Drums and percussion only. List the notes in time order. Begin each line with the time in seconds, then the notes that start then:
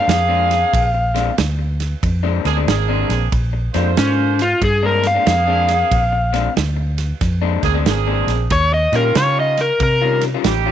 0.09 snare, ride
0.51 snare, ride
0.73 kick, ride
1.16 snare, ride
1.38 snare, ride
1.80 snare, ride
2.03 kick, ride
2.45 snare, ride
2.68 snare, ride
3.10 snare, ride
3.32 kick, ride
3.74 snare, ride
3.97 snare, ride
4.39 snare, ride
4.62 kick, ride
5.03 snare, ride
5.27 snare, ride
5.68 snare, ride
5.92 kick, ride
6.34 snare, ride
6.57 snare, ride
6.98 snare, ride
7.21 kick, snare, ride
7.63 kick, snare, ride
7.86 snare, ride
8.28 snare, ride
8.50 kick, snare, ride
8.93 snare, ride
9.15 snare, ride
9.57 snare, ride
9.80 kick, ride
10.21 snare, ride
10.44 snare, ride